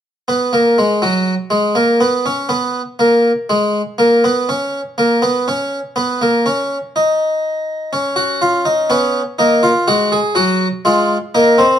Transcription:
<<
  \new Staff \with { instrumentName = "Harpsichord" } { \time 4/4 \key fis \mixolydian \tempo 4 = 61 r16 b16 ais16 gis16 fis8 gis16 ais16 b16 cis'16 b8 ais8 gis8 | ais16 b16 cis'8 ais16 b16 cis'8 b16 ais16 cis'8 dis'4 | r16 fis'16 eis'16 dis'16 cis'8 dis'16 eis'16 fis'16 gis'16 fis'8 eis'8 dis'8 | }
  \new Staff \with { instrumentName = "Harpsichord" } { \time 4/4 \key fis \mixolydian r1 | r1 | cis'4 b8 ais8 gis8 fis8 gis8 ais16 bis16 | }
>>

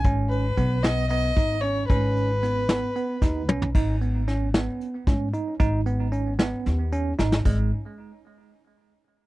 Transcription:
<<
  \new Staff \with { instrumentName = "Violin" } { \time 7/8 \key gis \minor \tempo 4 = 113 r8 b'4 dis''8 dis''4 cis''8 | b'2. r8 | r2. r8 | r2. r8 |
r2. r8 | }
  \new Staff \with { instrumentName = "Tine electric piano" } { \time 7/8 \key gis \minor cis'4 b8 b8 b8 dis'8 cis'8 | cis'4 b8 b8 b8 dis'8 cis'8 | dis'8 b8 cis'8 b4 cis'8 dis'8 | dis'8 b8 cis'8 b4 cis'8 dis'8 |
gis8 r2. | }
  \new Staff \with { instrumentName = "Upright bass" } { \clef bass \time 7/8 \key gis \minor gis,,4 b,,4. gis,,4 | gis,,2 r8 dis,8 b,,8 | gis,,2 r8 gis,8 r8 | gis,,2 dis,4 gis,,8 |
gis,,8 r2. | }
  \new DrumStaff \with { instrumentName = "Drums" } \drummode { \time 7/8 <hh bd>8 hh8 <hh bd>8 <hh sn>8 hh8 <hh bd>8 hh8 | <hh bd>8 hh8 <hh sn>8 <hh sn>8 hh8 <hh bd sn>8 tommh16 tomfh16 | <cymc bd>8 hh8 <hh sn>8 <hh sn>8 hh8 <hh bd sn>8 hh8 | <hh bd>8 hh8 hh8 <hh sn>8 <hh sn>8 hh8 sn16 sn16 |
<cymc bd>4. r4 r4 | }
>>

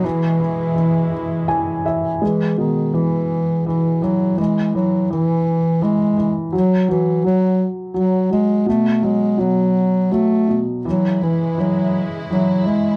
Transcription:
<<
  \new Staff \with { instrumentName = "String section" } { \clef bass \time 3/4 \key e \major \tempo 4 = 83 <b, gis e'>2. | r2. | r2. | r2. |
r2. | <cis gis e'>2. | }
  \new Staff \with { instrumentName = "Bass clarinet" } { \clef bass \time 3/4 \key e \major e2~ e8 r8 | e8 dis8 e4 e8 fis8 | gis8 fis8 e4 gis8. r16 | fis8 e8 fis8 r8 fis8 gis8 |
a8 gis8 fis4 a8. r16 | fis8 e8 fis8 r8 fis8 gis8 | }
  \new Staff \with { instrumentName = "Felt piano" } { \clef bass \time 3/4 \key e \major e8 e8 e8 e8 <e gis''>8 <e e''>8 | gis8 b,8 e4 e8 e8 | e8 e8 e4 e8 e8 | fis8 fis8 fis4 fis8 fis8 |
b,8 fis8 b,4 fis8 b,8 | e8 e8 e4 e8 e8 | }
>>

